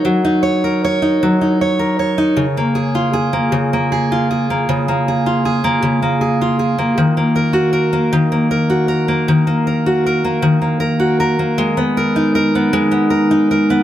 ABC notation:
X:1
M:6/8
L:1/16
Q:3/8=52
K:D#m
V:1 name="Steel-string acoustic guitar"
[F,DAc] D c A c D F, D c A c D | C, A, G E G A, C, A, G E G A, | C, A, G E G A, C, A, G E G A, | D, A, A F A A, D, A, A F A A, |
D, A, A F A A, D, A, A F A A, | G, B, A D A B, G, B, A D A B, |]